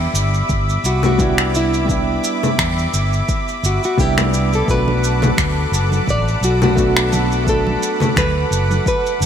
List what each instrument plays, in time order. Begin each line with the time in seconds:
Already playing: grand piano G3 B3 D4 E4, analog synth pad E5 B5 D6
0.14 fretless electric bass G1, shaker
0.34 shaker
0.49 fretless electric bass G1, kick, shaker
0.69 shaker
0.84 fretless electric bass C2, nylon-string guitar F#4, shaker
1.03 nylon-string guitar F#4, low conga, shaker
1.18 grand piano G3 B3 D4 E4, kick, shaker
1.38 finger snap
1.55 nylon-string guitar E4, shaker
1.74 shaker
1.85 grand piano G3 B3 D4, kick
1.89 grand piano E4, shaker
2.24 shaker
2.43 low conga, shaker
2.59 fretless electric bass E2, finger snap, kick, shaker
2.79 shaker
2.94 fretless electric bass G1, shaker
3.13 shaker
3.29 kick, shaker
3.48 shaker
3.63 fretless electric bass G1, nylon-string guitar F#4, shaker
3.83 nylon-string guitar F#4, shaker
3.97 fretless electric bass C2, grand piano G3 B3 D4 E4, nylon-string guitar G4, kick, shaker
4.18 finger snap, low conga, shaker
4.34 shaker
4.53 nylon-string guitar A4, shaker
4.65 fretless electric bass B1, grand piano A3 B3 D4, analog synth pad A4 F#5 B5, kick, shaker
4.70 grand piano F#4, nylon-string guitar B4
4.88 high conga
5.04 shaker
5.22 low conga, shaker
5.38 fretless electric bass D2, finger snap, kick, high conga, shaker
5.72 fretless electric bass F#1, shaker
5.92 high conga, shaker
6.08 fretless electric bass A1, nylon-string guitar D5, kick, shaker
6.28 shaker
6.41 fretless electric bass B1, nylon-string guitar F#4, high conga, shaker
6.62 nylon-string guitar F#4, low conga, shaker
6.75 grand piano A3 B3 D4 F#4, kick, shaker
6.97 finger snap
7.12 high conga, low conga, shaker
7.32 shaker
7.44 grand piano A3 B3 D4, kick, shaker
7.49 grand piano F#4, nylon-string guitar A4
7.67 high conga
7.83 shaker
8.00 low conga, shaker
8.16 fretless electric bass D2, nylon-string guitar B4, finger snap, kick, high conga, shaker
8.51 fretless electric bass F#1, shaker
8.71 high conga, shaker
8.86 nylon-string guitar B4, kick, shaker
9.06 shaker
9.20 fretless electric bass F#1, high conga, shaker